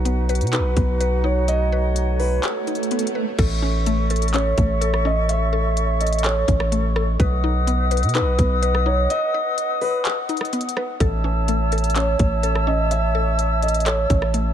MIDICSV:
0, 0, Header, 1, 7, 480
1, 0, Start_track
1, 0, Tempo, 476190
1, 1494, Time_signature, 4, 2, 24, 8
1, 14650, End_track
2, 0, Start_track
2, 0, Title_t, "Flute section"
2, 0, Program_c, 0, 73
2, 0, Note_on_c, 0, 63, 81
2, 0, Note_on_c, 0, 66, 76
2, 0, Note_on_c, 0, 71, 74
2, 0, Note_on_c, 0, 78, 85
2, 1476, Note_off_c, 0, 71, 0
2, 1494, Note_on_c, 0, 73, 74
2, 3107, Note_off_c, 0, 66, 0
2, 3109, Note_off_c, 0, 63, 0
2, 3170, Note_off_c, 0, 78, 0
2, 3395, Note_off_c, 0, 73, 0
2, 3414, Note_on_c, 0, 73, 74
2, 3415, Note_on_c, 0, 69, 80
2, 3415, Note_on_c, 0, 85, 89
2, 3416, Note_on_c, 0, 76, 76
2, 6936, Note_off_c, 0, 76, 0
2, 7215, Note_off_c, 0, 73, 0
2, 7216, Note_off_c, 0, 69, 0
2, 7216, Note_off_c, 0, 85, 0
2, 7254, Note_on_c, 0, 87, 90
2, 7255, Note_on_c, 0, 71, 78
2, 7255, Note_on_c, 0, 75, 79
2, 7255, Note_on_c, 0, 78, 74
2, 10778, Note_off_c, 0, 75, 0
2, 10827, Note_off_c, 0, 87, 0
2, 10845, Note_off_c, 0, 71, 0
2, 11056, Note_off_c, 0, 78, 0
2, 11092, Note_on_c, 0, 73, 84
2, 11093, Note_on_c, 0, 76, 72
2, 11093, Note_on_c, 0, 81, 77
2, 11093, Note_on_c, 0, 88, 93
2, 14639, Note_off_c, 0, 81, 0
2, 14650, Note_off_c, 0, 73, 0
2, 14650, Note_off_c, 0, 76, 0
2, 14650, Note_off_c, 0, 88, 0
2, 14650, End_track
3, 0, Start_track
3, 0, Title_t, "Felt piano"
3, 0, Program_c, 1, 0
3, 540, Note_on_c, 1, 71, 85
3, 1216, Note_off_c, 1, 71, 0
3, 1251, Note_on_c, 1, 73, 77
3, 1480, Note_off_c, 1, 73, 0
3, 1494, Note_on_c, 1, 75, 104
3, 2173, Note_off_c, 1, 75, 0
3, 2213, Note_on_c, 1, 71, 86
3, 2441, Note_off_c, 1, 71, 0
3, 4376, Note_on_c, 1, 73, 88
3, 5055, Note_off_c, 1, 73, 0
3, 5098, Note_on_c, 1, 75, 86
3, 5324, Note_off_c, 1, 75, 0
3, 5334, Note_on_c, 1, 76, 86
3, 6013, Note_off_c, 1, 76, 0
3, 6055, Note_on_c, 1, 75, 75
3, 6283, Note_off_c, 1, 75, 0
3, 6290, Note_on_c, 1, 73, 81
3, 6743, Note_off_c, 1, 73, 0
3, 8221, Note_on_c, 1, 71, 85
3, 8897, Note_off_c, 1, 71, 0
3, 8932, Note_on_c, 1, 73, 81
3, 9161, Note_off_c, 1, 73, 0
3, 9173, Note_on_c, 1, 75, 111
3, 9853, Note_off_c, 1, 75, 0
3, 9893, Note_on_c, 1, 71, 91
3, 10121, Note_off_c, 1, 71, 0
3, 12057, Note_on_c, 1, 73, 90
3, 12735, Note_off_c, 1, 73, 0
3, 12776, Note_on_c, 1, 75, 85
3, 13003, Note_off_c, 1, 75, 0
3, 13014, Note_on_c, 1, 76, 92
3, 13693, Note_off_c, 1, 76, 0
3, 13736, Note_on_c, 1, 75, 76
3, 13963, Note_off_c, 1, 75, 0
3, 13970, Note_on_c, 1, 73, 85
3, 14423, Note_off_c, 1, 73, 0
3, 14650, End_track
4, 0, Start_track
4, 0, Title_t, "Synth pluck"
4, 0, Program_c, 2, 84
4, 0, Note_on_c, 2, 63, 85
4, 0, Note_on_c, 2, 71, 101
4, 52, Note_on_c, 2, 59, 80
4, 284, Note_off_c, 2, 71, 0
4, 296, Note_on_c, 2, 71, 88
4, 522, Note_off_c, 2, 63, 0
4, 534, Note_on_c, 2, 63, 102
4, 758, Note_off_c, 2, 59, 0
4, 770, Note_on_c, 2, 59, 71
4, 1001, Note_off_c, 2, 71, 0
4, 1013, Note_on_c, 2, 71, 88
4, 1237, Note_off_c, 2, 63, 0
4, 1249, Note_on_c, 2, 63, 87
4, 1726, Note_off_c, 2, 71, 0
4, 1738, Note_on_c, 2, 71, 90
4, 2212, Note_off_c, 2, 59, 0
4, 2443, Note_off_c, 2, 71, 0
4, 2455, Note_on_c, 2, 71, 98
4, 2684, Note_off_c, 2, 63, 0
4, 2697, Note_on_c, 2, 63, 76
4, 2936, Note_on_c, 2, 59, 85
4, 3164, Note_off_c, 2, 71, 0
4, 3176, Note_on_c, 2, 71, 79
4, 3415, Note_off_c, 2, 59, 0
4, 3415, Note_off_c, 2, 63, 0
4, 3415, Note_off_c, 2, 71, 0
4, 3416, Note_on_c, 2, 69, 99
4, 3653, Note_on_c, 2, 61, 86
4, 3897, Note_on_c, 2, 57, 86
4, 4126, Note_off_c, 2, 69, 0
4, 4138, Note_on_c, 2, 69, 84
4, 4364, Note_off_c, 2, 61, 0
4, 4376, Note_on_c, 2, 61, 94
4, 4603, Note_off_c, 2, 57, 0
4, 4615, Note_on_c, 2, 57, 86
4, 4839, Note_off_c, 2, 69, 0
4, 4851, Note_on_c, 2, 69, 87
4, 5079, Note_off_c, 2, 61, 0
4, 5091, Note_on_c, 2, 61, 84
4, 5560, Note_off_c, 2, 69, 0
4, 5572, Note_on_c, 2, 69, 83
4, 6054, Note_off_c, 2, 57, 0
4, 6283, Note_off_c, 2, 69, 0
4, 6295, Note_on_c, 2, 69, 101
4, 6518, Note_off_c, 2, 61, 0
4, 6530, Note_on_c, 2, 61, 83
4, 6773, Note_on_c, 2, 57, 78
4, 7006, Note_off_c, 2, 69, 0
4, 7018, Note_on_c, 2, 69, 82
4, 7252, Note_off_c, 2, 61, 0
4, 7253, Note_off_c, 2, 57, 0
4, 7255, Note_on_c, 2, 71, 104
4, 7256, Note_off_c, 2, 69, 0
4, 7497, Note_on_c, 2, 63, 85
4, 7733, Note_on_c, 2, 59, 79
4, 7964, Note_off_c, 2, 71, 0
4, 7976, Note_on_c, 2, 71, 87
4, 8202, Note_off_c, 2, 63, 0
4, 8214, Note_on_c, 2, 63, 102
4, 8439, Note_off_c, 2, 59, 0
4, 8451, Note_on_c, 2, 59, 73
4, 8681, Note_off_c, 2, 71, 0
4, 8693, Note_on_c, 2, 71, 86
4, 8918, Note_off_c, 2, 63, 0
4, 8930, Note_on_c, 2, 63, 89
4, 9406, Note_off_c, 2, 71, 0
4, 9418, Note_on_c, 2, 71, 87
4, 9893, Note_off_c, 2, 59, 0
4, 10123, Note_off_c, 2, 71, 0
4, 10135, Note_on_c, 2, 71, 98
4, 10363, Note_off_c, 2, 63, 0
4, 10375, Note_on_c, 2, 63, 84
4, 10614, Note_on_c, 2, 59, 83
4, 10844, Note_off_c, 2, 71, 0
4, 10856, Note_on_c, 2, 71, 84
4, 11094, Note_off_c, 2, 59, 0
4, 11094, Note_off_c, 2, 63, 0
4, 11095, Note_off_c, 2, 71, 0
4, 11095, Note_on_c, 2, 69, 97
4, 11332, Note_on_c, 2, 61, 84
4, 11575, Note_on_c, 2, 57, 82
4, 11806, Note_off_c, 2, 69, 0
4, 11818, Note_on_c, 2, 69, 87
4, 12044, Note_off_c, 2, 61, 0
4, 12056, Note_on_c, 2, 61, 91
4, 12284, Note_off_c, 2, 57, 0
4, 12296, Note_on_c, 2, 57, 86
4, 12521, Note_off_c, 2, 69, 0
4, 12533, Note_on_c, 2, 69, 81
4, 12760, Note_off_c, 2, 61, 0
4, 12772, Note_on_c, 2, 61, 86
4, 13241, Note_off_c, 2, 69, 0
4, 13253, Note_on_c, 2, 69, 86
4, 13735, Note_off_c, 2, 57, 0
4, 13965, Note_off_c, 2, 69, 0
4, 13978, Note_on_c, 2, 69, 101
4, 14199, Note_off_c, 2, 61, 0
4, 14211, Note_on_c, 2, 61, 83
4, 14454, Note_on_c, 2, 57, 80
4, 14650, Note_off_c, 2, 57, 0
4, 14650, Note_off_c, 2, 61, 0
4, 14650, Note_off_c, 2, 69, 0
4, 14650, End_track
5, 0, Start_track
5, 0, Title_t, "808-style bass"
5, 0, Program_c, 3, 38
5, 0, Note_on_c, 3, 35, 102
5, 414, Note_on_c, 3, 47, 97
5, 429, Note_off_c, 3, 35, 0
5, 594, Note_on_c, 3, 35, 100
5, 609, Note_off_c, 3, 47, 0
5, 765, Note_off_c, 3, 35, 0
5, 774, Note_on_c, 3, 35, 107
5, 2414, Note_off_c, 3, 35, 0
5, 3413, Note_on_c, 3, 33, 112
5, 4573, Note_off_c, 3, 33, 0
5, 4614, Note_on_c, 3, 33, 108
5, 6494, Note_off_c, 3, 33, 0
5, 6534, Note_on_c, 3, 33, 108
5, 7225, Note_off_c, 3, 33, 0
5, 7254, Note_on_c, 3, 35, 104
5, 8094, Note_on_c, 3, 47, 101
5, 8109, Note_off_c, 3, 35, 0
5, 8274, Note_on_c, 3, 35, 103
5, 8289, Note_off_c, 3, 47, 0
5, 8445, Note_off_c, 3, 35, 0
5, 8455, Note_on_c, 3, 35, 110
5, 9145, Note_off_c, 3, 35, 0
5, 11092, Note_on_c, 3, 33, 110
5, 12253, Note_off_c, 3, 33, 0
5, 12293, Note_on_c, 3, 33, 110
5, 14173, Note_off_c, 3, 33, 0
5, 14215, Note_on_c, 3, 33, 110
5, 14650, Note_off_c, 3, 33, 0
5, 14650, End_track
6, 0, Start_track
6, 0, Title_t, "Swell"
6, 0, Program_c, 4, 103
6, 0, Note_on_c, 4, 60, 83
6, 3413, Note_off_c, 4, 60, 0
6, 14650, End_track
7, 0, Start_track
7, 0, Title_t, "Drums"
7, 55, Note_on_c, 9, 42, 68
7, 156, Note_off_c, 9, 42, 0
7, 294, Note_on_c, 9, 42, 49
7, 354, Note_off_c, 9, 42, 0
7, 354, Note_on_c, 9, 42, 50
7, 414, Note_off_c, 9, 42, 0
7, 414, Note_on_c, 9, 42, 52
7, 474, Note_off_c, 9, 42, 0
7, 474, Note_on_c, 9, 42, 49
7, 531, Note_off_c, 9, 42, 0
7, 531, Note_on_c, 9, 42, 68
7, 535, Note_on_c, 9, 39, 99
7, 632, Note_off_c, 9, 42, 0
7, 636, Note_off_c, 9, 39, 0
7, 772, Note_on_c, 9, 42, 62
7, 774, Note_on_c, 9, 36, 92
7, 873, Note_off_c, 9, 42, 0
7, 875, Note_off_c, 9, 36, 0
7, 1014, Note_on_c, 9, 42, 70
7, 1114, Note_off_c, 9, 42, 0
7, 1493, Note_on_c, 9, 42, 67
7, 1594, Note_off_c, 9, 42, 0
7, 1975, Note_on_c, 9, 42, 70
7, 2076, Note_off_c, 9, 42, 0
7, 2214, Note_on_c, 9, 46, 45
7, 2314, Note_off_c, 9, 46, 0
7, 2452, Note_on_c, 9, 42, 66
7, 2456, Note_on_c, 9, 39, 100
7, 2552, Note_off_c, 9, 42, 0
7, 2557, Note_off_c, 9, 39, 0
7, 2694, Note_on_c, 9, 42, 39
7, 2774, Note_off_c, 9, 42, 0
7, 2774, Note_on_c, 9, 42, 46
7, 2853, Note_off_c, 9, 42, 0
7, 2853, Note_on_c, 9, 42, 48
7, 2933, Note_off_c, 9, 42, 0
7, 2933, Note_on_c, 9, 42, 56
7, 3013, Note_off_c, 9, 42, 0
7, 3013, Note_on_c, 9, 42, 60
7, 3093, Note_off_c, 9, 42, 0
7, 3093, Note_on_c, 9, 42, 65
7, 3194, Note_off_c, 9, 42, 0
7, 3413, Note_on_c, 9, 36, 125
7, 3413, Note_on_c, 9, 42, 74
7, 3413, Note_on_c, 9, 49, 97
7, 3514, Note_off_c, 9, 36, 0
7, 3514, Note_off_c, 9, 42, 0
7, 3514, Note_off_c, 9, 49, 0
7, 3895, Note_on_c, 9, 42, 71
7, 3996, Note_off_c, 9, 42, 0
7, 4134, Note_on_c, 9, 42, 53
7, 4193, Note_off_c, 9, 42, 0
7, 4193, Note_on_c, 9, 42, 53
7, 4254, Note_off_c, 9, 42, 0
7, 4254, Note_on_c, 9, 42, 50
7, 4314, Note_off_c, 9, 42, 0
7, 4314, Note_on_c, 9, 42, 52
7, 4372, Note_off_c, 9, 42, 0
7, 4372, Note_on_c, 9, 42, 66
7, 4376, Note_on_c, 9, 39, 100
7, 4473, Note_off_c, 9, 42, 0
7, 4477, Note_off_c, 9, 39, 0
7, 4613, Note_on_c, 9, 42, 65
7, 4614, Note_on_c, 9, 36, 98
7, 4713, Note_off_c, 9, 42, 0
7, 4715, Note_off_c, 9, 36, 0
7, 4855, Note_on_c, 9, 42, 76
7, 4956, Note_off_c, 9, 42, 0
7, 4976, Note_on_c, 9, 37, 91
7, 5077, Note_off_c, 9, 37, 0
7, 5334, Note_on_c, 9, 42, 72
7, 5435, Note_off_c, 9, 42, 0
7, 5816, Note_on_c, 9, 42, 71
7, 5916, Note_off_c, 9, 42, 0
7, 6054, Note_on_c, 9, 42, 52
7, 6114, Note_off_c, 9, 42, 0
7, 6114, Note_on_c, 9, 42, 50
7, 6175, Note_off_c, 9, 42, 0
7, 6175, Note_on_c, 9, 42, 51
7, 6235, Note_off_c, 9, 42, 0
7, 6235, Note_on_c, 9, 42, 50
7, 6292, Note_off_c, 9, 42, 0
7, 6292, Note_on_c, 9, 42, 67
7, 6296, Note_on_c, 9, 39, 103
7, 6393, Note_off_c, 9, 42, 0
7, 6397, Note_off_c, 9, 39, 0
7, 6533, Note_on_c, 9, 42, 64
7, 6534, Note_on_c, 9, 36, 98
7, 6634, Note_off_c, 9, 42, 0
7, 6635, Note_off_c, 9, 36, 0
7, 6654, Note_on_c, 9, 37, 98
7, 6755, Note_off_c, 9, 37, 0
7, 6775, Note_on_c, 9, 42, 74
7, 6876, Note_off_c, 9, 42, 0
7, 7016, Note_on_c, 9, 37, 91
7, 7116, Note_off_c, 9, 37, 0
7, 7254, Note_on_c, 9, 36, 123
7, 7255, Note_on_c, 9, 42, 69
7, 7355, Note_off_c, 9, 36, 0
7, 7355, Note_off_c, 9, 42, 0
7, 7736, Note_on_c, 9, 42, 72
7, 7837, Note_off_c, 9, 42, 0
7, 7974, Note_on_c, 9, 42, 53
7, 8035, Note_off_c, 9, 42, 0
7, 8035, Note_on_c, 9, 42, 51
7, 8095, Note_off_c, 9, 42, 0
7, 8095, Note_on_c, 9, 42, 51
7, 8155, Note_off_c, 9, 42, 0
7, 8155, Note_on_c, 9, 42, 50
7, 8213, Note_off_c, 9, 42, 0
7, 8213, Note_on_c, 9, 42, 69
7, 8217, Note_on_c, 9, 39, 105
7, 8314, Note_off_c, 9, 42, 0
7, 8318, Note_off_c, 9, 39, 0
7, 8454, Note_on_c, 9, 42, 68
7, 8455, Note_on_c, 9, 36, 100
7, 8554, Note_off_c, 9, 42, 0
7, 8555, Note_off_c, 9, 36, 0
7, 8695, Note_on_c, 9, 42, 75
7, 8796, Note_off_c, 9, 42, 0
7, 8817, Note_on_c, 9, 37, 92
7, 8917, Note_off_c, 9, 37, 0
7, 9175, Note_on_c, 9, 42, 73
7, 9276, Note_off_c, 9, 42, 0
7, 9655, Note_on_c, 9, 42, 71
7, 9756, Note_off_c, 9, 42, 0
7, 9893, Note_on_c, 9, 46, 47
7, 9994, Note_off_c, 9, 46, 0
7, 10130, Note_on_c, 9, 42, 70
7, 10134, Note_on_c, 9, 39, 102
7, 10231, Note_off_c, 9, 42, 0
7, 10235, Note_off_c, 9, 39, 0
7, 10373, Note_on_c, 9, 42, 42
7, 10453, Note_off_c, 9, 42, 0
7, 10453, Note_on_c, 9, 42, 46
7, 10492, Note_on_c, 9, 37, 92
7, 10533, Note_off_c, 9, 42, 0
7, 10533, Note_on_c, 9, 42, 51
7, 10593, Note_off_c, 9, 37, 0
7, 10612, Note_off_c, 9, 42, 0
7, 10612, Note_on_c, 9, 42, 58
7, 10692, Note_off_c, 9, 42, 0
7, 10692, Note_on_c, 9, 42, 62
7, 10773, Note_off_c, 9, 42, 0
7, 10773, Note_on_c, 9, 42, 67
7, 10853, Note_on_c, 9, 37, 93
7, 10873, Note_off_c, 9, 42, 0
7, 10954, Note_off_c, 9, 37, 0
7, 11092, Note_on_c, 9, 36, 127
7, 11092, Note_on_c, 9, 42, 70
7, 11193, Note_off_c, 9, 36, 0
7, 11193, Note_off_c, 9, 42, 0
7, 11574, Note_on_c, 9, 42, 70
7, 11675, Note_off_c, 9, 42, 0
7, 11813, Note_on_c, 9, 42, 51
7, 11873, Note_off_c, 9, 42, 0
7, 11873, Note_on_c, 9, 42, 50
7, 11933, Note_off_c, 9, 42, 0
7, 11933, Note_on_c, 9, 42, 49
7, 11993, Note_off_c, 9, 42, 0
7, 11993, Note_on_c, 9, 42, 51
7, 12051, Note_off_c, 9, 42, 0
7, 12051, Note_on_c, 9, 42, 69
7, 12055, Note_on_c, 9, 39, 102
7, 12152, Note_off_c, 9, 42, 0
7, 12156, Note_off_c, 9, 39, 0
7, 12291, Note_on_c, 9, 42, 68
7, 12293, Note_on_c, 9, 36, 98
7, 12392, Note_off_c, 9, 42, 0
7, 12394, Note_off_c, 9, 36, 0
7, 12533, Note_on_c, 9, 42, 74
7, 12634, Note_off_c, 9, 42, 0
7, 12655, Note_on_c, 9, 37, 89
7, 12756, Note_off_c, 9, 37, 0
7, 13014, Note_on_c, 9, 42, 72
7, 13115, Note_off_c, 9, 42, 0
7, 13495, Note_on_c, 9, 42, 70
7, 13596, Note_off_c, 9, 42, 0
7, 13734, Note_on_c, 9, 42, 52
7, 13794, Note_off_c, 9, 42, 0
7, 13794, Note_on_c, 9, 42, 51
7, 13855, Note_off_c, 9, 42, 0
7, 13855, Note_on_c, 9, 42, 50
7, 13914, Note_off_c, 9, 42, 0
7, 13914, Note_on_c, 9, 42, 51
7, 13972, Note_off_c, 9, 42, 0
7, 13972, Note_on_c, 9, 42, 68
7, 13976, Note_on_c, 9, 39, 97
7, 14073, Note_off_c, 9, 42, 0
7, 14077, Note_off_c, 9, 39, 0
7, 14213, Note_on_c, 9, 42, 65
7, 14215, Note_on_c, 9, 36, 94
7, 14314, Note_off_c, 9, 42, 0
7, 14315, Note_off_c, 9, 36, 0
7, 14334, Note_on_c, 9, 37, 92
7, 14435, Note_off_c, 9, 37, 0
7, 14455, Note_on_c, 9, 42, 72
7, 14556, Note_off_c, 9, 42, 0
7, 14650, End_track
0, 0, End_of_file